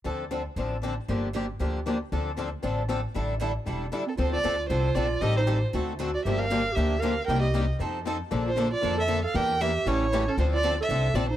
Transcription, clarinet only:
4.07 4.12 C4 medium
4.17 4.31 F4 medium
4.32 4.67 F4 medium
4.70 4.96 F4 medium
4.96 5.24 F4 medium
5.23 5.37 G4 medium
5.38 5.61 D#4 medium
6.14 6.24 F#4 medium
6.24 6.39 G4 medium
6.38 6.74 A#4 medium
6.72 7.01 G4 medium
6.99 7.24 A#4 medium
7.25 7.39 A#4 medium
7.40 7.65 G4 medium
8.46 8.70 F4 medium
8.72 8.96 F4 medium
8.97 9.21 A4 medium
9.24 9.36 A4 medium
9.35 9.63 A#4 medium
9.61 9.89 G4 medium
9.87 10.30 E4 medium
10.28 10.37 C#4 medium
10.38 10.45 F4 medium
10.53 10.79 F4 medium
10.81 11.16 A4 medium
11.15 11.29 F4 medium
11.30 11.37 D#4 medium

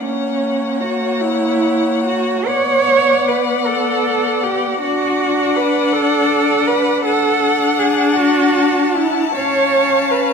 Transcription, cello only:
0.05 0.82 C#4 medium
0.81 1.22 F#4 medium
1.20 2.04 E4 medium
2.05 2.49 F#4 medium
2.47 3.29 C#5 loud
3.28 3.68 B4 medium
3.67 4.45 A4 medium
4.43 4.81 G4 medium
4.81 5.57 F#4 medium
5.56 5.94 B4 medium
5.92 6.68 A4 medium
6.67 7.05 B4 medium
7.05 7.81 A4 medium
7.79 8.18 G#4 medium
8.16 8.97 F#4 medium
8.95 9.34 E4 medium
9.35 10.12 C#5 medium
10.10 10.33 B4 medium

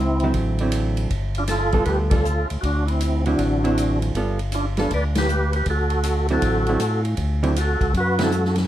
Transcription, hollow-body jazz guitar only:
0.24 0.59 D3 medium
0.24 0.59 F#3 medium
0.24 0.59 C4 medium
0.24 0.59 E4 medium
0.61 1.09 D3 medium
0.61 1.09 F#3 medium
0.61 1.09 C4 medium
0.61 1.09 E4 medium
1.73 2.09 G3 medium
1.73 2.09 B3 medium
1.73 2.10 F4 medium
1.73 2.10 A4 medium
2.11 2.23 G3 medium
2.11 2.24 B3 medium
2.11 2.24 F4 medium
2.11 2.24 A4 medium
3.27 3.62 D3 medium
3.27 3.62 F#3 medium
3.27 3.62 C4 medium
3.27 3.62 E4 medium
3.64 4.12 D3 medium
3.64 4.13 F#3 medium
3.64 4.13 C4 medium
3.64 4.13 E4 medium
4.17 4.38 G3 medium
4.17 4.38 B3 medium
4.17 4.38 F4 medium
4.17 4.38 A4 medium
4.78 4.90 G3 medium
4.78 4.90 B3 medium
4.78 4.90 F4 medium
4.78 4.90 A4 medium
6.30 6.65 D3 medium
6.30 6.65 F#3 medium
6.30 6.66 C4 medium
6.30 6.66 E4 medium
6.69 6.80 D3 medium
6.69 6.80 F#3 medium
6.69 6.80 C4 medium
6.69 6.80 E4 medium
7.43 7.55 D3 medium
7.43 7.55 F#3 medium
7.43 7.55 C4 medium
7.43 7.55 E4 medium
8.19 8.30 D3 medium
8.19 8.31 F#3 medium
8.19 8.31 C4 medium
8.19 8.31 E4 medium

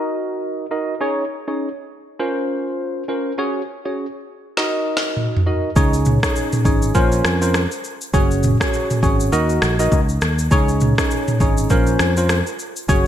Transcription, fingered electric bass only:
5.76 6.17 C#2 loud
6.65 6.91 G#1 medium
6.95 7.21 A#1 loud
7.25 7.66 F2 medium
8.14 8.55 F#1 loud
9.03 9.29 G#1 medium
9.32 9.58 D#2 loud
9.62 9.88 A#1 loud
9.92 10.18 C#2 loud
10.22 10.48 D#2 loud
10.51 10.92 C#2 loud
11.40 11.66 G#1 medium
11.70 11.96 A#1 loud
12.00 12.41 F2 medium
12.89 13.07 F#1 loud

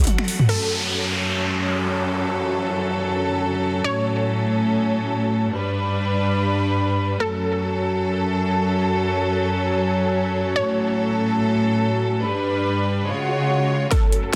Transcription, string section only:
0.00 0.45 F#3 medium
0.00 0.45 F#4 medium
0.00 0.45 A4 medium
0.00 0.47 F#5 medium
0.49 3.81 F#2 medium
0.49 5.48 F#3 medium
0.49 3.81 C#4 medium
0.49 5.48 A4 medium
3.84 5.51 A2 medium
3.84 5.51 C#4 medium
5.52 7.18 G2 medium
5.52 7.18 G3 medium
5.52 7.18 D4 medium
5.52 7.18 B4 medium
7.20 10.52 F#2 medium
7.20 12.20 F#3 medium
7.20 12.20 C#4 medium
7.20 10.52 A4 medium
10.56 12.22 A2 medium
10.56 12.22 A4 medium
12.24 13.07 G2 medium
12.24 13.07 G3 medium
12.24 13.07 D4 medium
12.24 13.07 B4 medium
13.08 13.91 C#3 medium
13.08 13.91 G#3 medium
13.08 13.91 F4 medium
13.08 13.91 C#5 medium
13.91 14.36 F#2 medium
13.91 14.36 F#3 medium
13.91 14.36 C#4 medium
13.91 14.36 A4 medium

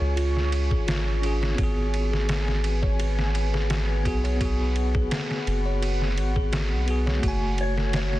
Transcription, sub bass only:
0.01 0.73 C#2 loud
0.71 1.55 G#1 medium
1.59 4.07 G#1 loud
4.05 5.08 B1 loud
5.47 6.19 F#1 medium
6.18 6.73 G#1 medium
6.72 7.20 B1 loud
7.23 8.20 F#1 loud

